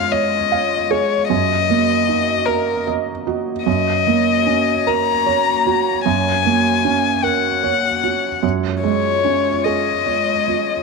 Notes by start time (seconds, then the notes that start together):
Already playing: F#2 G#3 C#4 F4 C#5 F5
0.12 C#5 D#5
0.52 F5
0.91 G#4 C#5
1.28 F#2 A#3 F#4 D#5
1.70 A#3
2.08 D#4
2.46 A#4
2.87 D#5
3.27 F#4
3.65 F#2 A#3 F#4 C#5 D#5
4.07 A#3
4.46 C#4
4.87 A#4 A#5
5.26 C#5
5.66 F#4
6.06 F#2 G#5
6.45 A#3
6.85 C#4
7.23 A#4 F#5
7.63 C#5
8.04 F#4
8.43 F#2 G#3 F4 C#5
8.83 G#3 C#5
9.25 C#4
9.64 G#4 D#5
10.06 C#5
10.48 F4